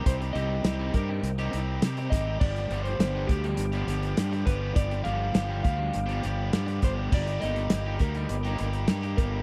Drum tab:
CC |----------------|x---------------|----------------|x---------------|
HH |xxx-x-x-xxx-xxx-|-xxxx-xxxxxxxxx-|xxx-x-x-xxx-xxx-|-xxxx-xxxxxxxxx-|
SD |----o-------o-o-|----o-------o---|----o-------o---|----o-------o---|
BD |o-----o-------o-|o-----o-------o-|o-----o-------o-|o-----o-------o-|